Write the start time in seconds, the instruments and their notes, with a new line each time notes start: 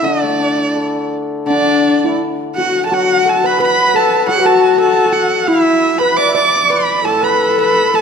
0.02 hammered dulcimer D3, horsehead fiddle D4, erhu D5
0.06 steel pan D4
0.22 hammered dulcimer A3
0.40 hammered dulcimer D4
0.57 hammered dulcimer E4
0.75 hammered dulcimer A4
1.46 hammered dulcimer D3, dizi D4, horsehead fiddle D4, erhu D5
1.50 steel pan D4
2.04 steel pan E4
2.55 dizi F#4, horsehead fiddle F#4, steel pan F#4, erhu F#5
2.86 hammered dulcimer F#3, steel pan A4, erhu A5
2.90 horsehead fiddle F#4, dizi F#4, steel pan F#4, erhu F#5
3.26 steel pan A4, erhu A5
3.44 dizi B4, steel pan B4, erhu B5
3.59 horsehead fiddle B4, steel pan B4, dizi B4, erhu B5
3.88 steel pan B4
3.95 steel pan A4, dizi A4, erhu A5
4.27 hammered dulcimer F#3, horsehead fiddle F#4, steel pan F#4, dizi F#4, erhu F#5
4.39 steel pan B4
4.45 steel pan A4, erhu A5
4.78 steel pan A4, dizi A4, erhu A5
5.06 steel pan A4
5.12 steel pan F#4, erhu F#5
5.47 horsehead fiddle E4, steel pan E4, dizi E4, erhu E5
5.98 horsehead fiddle B4, dizi B4, steel pan B4, erhu B5
6.16 dizi D5, steel pan D5, erhu D6
6.29 steel pan E5
6.34 horsehead fiddle D5, steel pan D5, dizi D5, erhu D6
6.70 steel pan B4, erhu B5
7.04 hammered dulcimer A2, horsehead fiddle A4, dizi A4, steel pan A4, erhu A5
7.22 dizi B4, steel pan B4, erhu B5
7.59 steel pan B4, erhu B5
7.92 dizi A4, steel pan A4, erhu A5